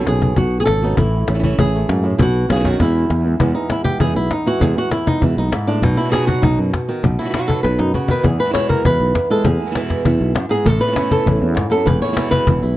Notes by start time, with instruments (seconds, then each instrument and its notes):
Already playing: nylon-string guitar B2
0.06 fretless electric bass B1, nylon-string guitar D#3 C#4 F#4 G#4, cajon slap
0.22 cajon bass
0.36 fretless electric bass B1, nylon-string guitar F#4, muted nylon-string guitar stroke, cajon bass
0.60 nylon-string guitar G#4
0.65 fretless electric bass G#1, nylon-string guitar B2 D#3 C#4 F#4 A4, cajon slap
0.82 nylon-string guitar D#3 B3 C#4 D#4 F#4
0.97 fretless electric bass A1, nylon-string guitar A2 E4, muted nylon-string guitar stroke, cajon bass
1.28 fretless electric bass A1, nylon-string guitar A3 C#4 E4, cajon slap
1.34 nylon-string guitar E3 A3 C#4 E4
1.39 nylon-string guitar E3 A3 C#4 E4
1.43 nylon-string guitar E3 A3 C#4 E4, cajon bass
1.58 fretless electric bass A1, nylon-string guitar E3 A3 C#4 E4 G#4, cajon bass
1.76 nylon-string guitar A3
1.88 fretless electric bass F#2, nylon-string guitar G#2, muted nylon-string guitar stroke, cajon slap
2.03 nylon-string guitar A2 A3 C#4 E4
2.18 fretless electric bass B1, nylon-string guitar B2 F#4, muted nylon-string guitar stroke, cajon bass
2.49 fretless electric bass B1, nylon-string guitar B2 C#3 D#3 C#4 F#4 G#4, cajon slap
2.55 nylon-string guitar B2 D#3 C#4 F#4
2.59 nylon-string guitar B2 D#3 C#4 F#4
2.64 nylon-string guitar B2 D#3 C#4 F#4, cajon bass, cajon slap
2.68 nylon-string guitar F#4
2.78 fretless electric bass E2, nylon-string guitar E2 B2 E3 G#3 B3 E4, cajon bass, cajon slap
3.09 fretless electric bass E2, muted nylon-string guitar stroke, cajon slap
3.24 nylon-string guitar G#3 B3 E4
3.39 nylon-string guitar E2 B2 E3 G#3 B3 E4, fretless electric bass E2, cajon bass
3.55 nylon-string guitar G#3 B3 D#4 E4
3.70 nylon-string guitar E4, muted nylon-string guitar stroke, cajon slap
3.84 nylon-string guitar G#3 B3 E4 G4, cajon bass
4.00 fretless electric bass E2, nylon-string guitar B2 E3 G#3 B3 E4 G#4, cajon bass
4.15 fretless electric bass B1, nylon-string guitar G#3 B3 E4
4.31 nylon-string guitar D#4, muted nylon-string guitar stroke, cajon slap
4.46 nylon-string guitar E3 G#3 B3 E4 F#4
4.61 fretless electric bass E2, nylon-string guitar E2 B2 E3 G#3 B3 E4 G#4, cajon bass
4.76 nylon-string guitar G#3 B3 E4 F#4
4.91 nylon-string guitar E4, muted nylon-string guitar stroke, cajon slap
5.06 nylon-string guitar G#3 B3 D#4 E4, cajon bass
5.22 fretless electric bass E2, nylon-string guitar B2 E3 G#3 B3 E4, cajon bass
5.37 fretless electric bass B1, nylon-string guitar G#3 B3 D#4 E4
5.52 nylon-string guitar G#2 E4, muted nylon-string guitar stroke, cajon slap
5.67 nylon-string guitar A2 G#3 B3 D4 E4
5.82 fretless electric bass B1, nylon-string guitar B2 D#4, muted nylon-string guitar stroke, cajon bass, cajon slap
5.97 nylon-string guitar B3 D#4 E4 F#4
6.04 nylon-string guitar F#3 B3 D#4 F#4
6.09 nylon-string guitar F#3 B3 D#4 F#4 G#4
6.13 nylon-string guitar B2 F#3 B3 D#4 F#4, cajon slap
6.27 nylon-string guitar F#4, cajon bass
6.42 fretless electric bass B1, nylon-string guitar B2 F#3 B3 D#4 F#4, cajon bass
6.58 fretless electric bass F#2
6.73 muted nylon-string guitar stroke, cajon bass, cajon slap
6.88 nylon-string guitar D#3 B3 D#4 F#4, cajon slap
7.03 fretless electric bass B1, nylon-string guitar B2, muted nylon-string guitar stroke, cajon bass
7.18 nylon-string guitar F#3 B3 D#4 E4 F#4
7.25 nylon-string guitar F#3 B3 D#4 F#4
7.29 nylon-string guitar F#3 B3 D#4 F#4
7.34 nylon-string guitar B2 F#3 B3 D#4 F#4, cajon slap
7.48 nylon-string guitar A4, cajon bass
7.63 fretless electric bass B1, nylon-string guitar B2 F#3 B3 D#4 F#4 B4, cajon slap
7.79 fretless electric bass F#2, nylon-string guitar D#4, cajon slap
7.94 nylon-string guitar C#3 F#4, muted nylon-string guitar stroke, cajon bass
8.08 nylon-string guitar D#3 B3 D#4 F#4 B4, cajon bass
8.23 nylon-string guitar E2 G#4, fretless electric bass E2, muted nylon-string guitar stroke, cajon bass
8.38 nylon-string guitar G#3 B3 E4 B4
8.45 nylon-string guitar E3 G#3 B3 E4
8.50 nylon-string guitar E3 G#3 B3 E4 C#5
8.54 nylon-string guitar B2 E3 G#3 B3 E4, cajon slap
8.69 nylon-string guitar A#4, cajon bass
8.84 fretless electric bass E2, nylon-string guitar B2 E3 G#3 B3 E4 B4, cajon bass
9.00 fretless electric bass B1
9.15 muted nylon-string guitar stroke, cajon bass, cajon slap
9.30 nylon-string guitar G#3 B3 E4 A4
9.45 fretless electric bass E2, nylon-string guitar E2 G#4, muted nylon-string guitar stroke, cajon bass
9.60 nylon-string guitar G#3 B3 E4
9.66 nylon-string guitar E3 G#3 B3 E4
9.71 nylon-string guitar E3 G#3 B3 E4
9.75 nylon-string guitar B2 E3 G#3 B3 E4, cajon slap
9.90 cajon bass, cajon slap
10.05 fretless electric bass E2, nylon-string guitar B2 E3 G#3 B3 E4, cajon bass
10.21 fretless electric bass B1
10.35 nylon-string guitar F#2, muted nylon-string guitar stroke, cajon slap
10.49 nylon-string guitar G#2 G#3 B3 E4 G#4
10.65 fretless electric bass A1, nylon-string guitar A2 A4, muted nylon-string guitar stroke, cajon bass
10.81 nylon-string guitar E3 B3 C#4 E4 B4
10.87 nylon-string guitar E3 B3 C#4 E4
10.92 nylon-string guitar E3 B3 C#4 E4
10.96 nylon-string guitar E3 B3 C#4 E4, cajon slap
11.11 nylon-string guitar A4, cajon bass
11.26 fretless electric bass A1, nylon-string guitar E3 B3 C#4 E4, cajon bass
11.41 fretless electric bass E2, nylon-string guitar B3 C#4 E4
11.55 nylon-string guitar G#2, muted nylon-string guitar stroke, cajon bass, cajon slap
11.70 nylon-string guitar F#2 B3 C#4 E4 A4
11.86 fretless electric bass E1, nylon-string guitar E2 B4, muted nylon-string guitar stroke, cajon bass
12.02 nylon-string guitar E3 G#3 B3 E4 C#5
12.07 nylon-string guitar E3 G#3 B3 E4
12.12 nylon-string guitar E3 G#3 B3 E4
12.16 nylon-string guitar B2 E3 G#3 B3 E4, cajon slap
12.31 nylon-string guitar B4, cajon bass
12.47 fretless electric bass E1, nylon-string guitar B2 E3 G#3 B3 E4, cajon bass
12.63 fretless electric bass B1, nylon-string guitar G#3 B3 E4